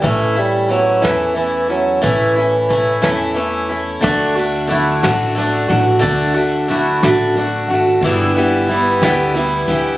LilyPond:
<<
  \new Staff \with { instrumentName = "Twelve-string acoustic guitar" } { \time 6/8 \key d \major \tempo 4. = 60 r2. | r2. | d'4 e'8 fis'8 d'8 fis'8 | d'4 e'8 fis'8 d'8 fis'8 |
d'4 e'8 g'8 e'8 g'8 | }
  \new Staff \with { instrumentName = "Steel-string acoustic guitar" } { \time 6/8 \key d \major <a, e a cis' e'>8 <a cis' e'>8 <e a cis' e'>8 <a, e a cis' e'>8 <e a cis' e'>8 <a cis' e'>8 | <a, e a cis' e'>8 <a cis' e'>8 <e a cis' e'>8 <a, e a cis' e'>8 <e a cis' e'>8 <a cis' e'>8 | <d a d' fis'>8 <a d' fis'>8 <d a d' fis'>8 <d a d' fis'>8 <d a d' fis'>8 <a d' fis'>8 | <d a d' fis'>8 <a d' fis'>8 <d a d' fis'>8 <d a d' fis'>8 <d a d' fis'>8 <a d' fis'>8 |
<g, d e g b e'>8 <e g b e'>8 <e g b e'>8 <g, d e g b e'>8 <e g b e'>8 <e g b e'>8 | }
  \new Staff \with { instrumentName = "Bassoon" } { \clef bass \time 6/8 \key d \major a8 g8 fis8 e8 e8 fis8 | e2 r4 | r2. | r2. |
r2. | }
  \new Staff \with { instrumentName = "Upright bass" } { \clef bass \time 6/8 \key d \major a,,4. e,4. | a,,4. e,4. | d,4. a,,4 a,,8 | d,4. a,,4 gis,,8 |
g,,4. d,4 d,8 | }
  \new DrumStaff \with { instrumentName = "Drums" } \drummode { \time 6/8 <hh bd>8 hh8 hh8 <hh sn>8 hh8 hh8 | <hh bd>8 hh8 <hh bd>8 <hh sn>8 hh8 hh8 | <bd cymr>8 cymr8 cymr8 <cymr sn>8 cymr8 cymr8 | <bd cymr>8 cymr8 cymr8 <cymr sn>8 cymr8 cymr8 |
<bd cymr>8 cymr8 cymr8 <cymr sn>8 cymr8 cymr8 | }
>>